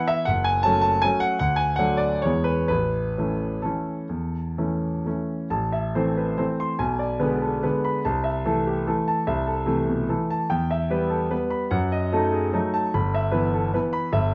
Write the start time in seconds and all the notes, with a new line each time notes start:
Already playing: E3 B3 E4
0.08 E5
0.25 F#1 F#5
0.44 G#5
0.63 F#3 A3 C#4 A5
0.81 A5
1.02 F#3 A3 C#4 G#5
1.20 F#5
1.39 D2 F#5
1.56 G#5
1.76 F#3 A3 D4 F#5
1.97 D5
2.22 E2 E3 G#3 B3 C#5
2.44 B4
2.68 A1 B4
3.18 E3 A3 C#4
3.62 E3 A3 C#4 A4
4.09 E2
4.58 E3 A3 C#4
5.06 E3 A3 C#4
5.50 A1 A5
5.72 E5
5.95 E3 A3 C4 C5
6.17 B4
6.38 E3 A3 C4 C5
6.60 C6
6.79 B1 G#5
6.99 D5
7.19 D3 G#3 B3 B4
7.41 A4
7.63 D3 G#3 B3 B4
7.84 B5
8.05 C2 A5
8.24 E5
8.45 E3 A3 A4
8.67 G4
8.87 E3 A3 A4
9.08 A5
9.27 C2 E5
9.47 A4
9.66 C3 E3 A3
9.88 B2
10.09 E3 A3 A4
10.30 A5
10.50 E2 G5
10.71 E5
10.90 G3 B3 B4
11.10 A4
11.31 G3 B3 B4
11.50 B5
11.71 F#2 F#5
11.92 D#5
12.12 F#3 A3 D#4 A4
12.33 G#4
12.53 F#3 A3 D#4 A4
12.74 A5
12.94 G1 B5
13.14 E5
13.32 E3 B3 B4
13.54 A4
13.74 E3 B3 B4
13.93 B5
14.13 G1 E5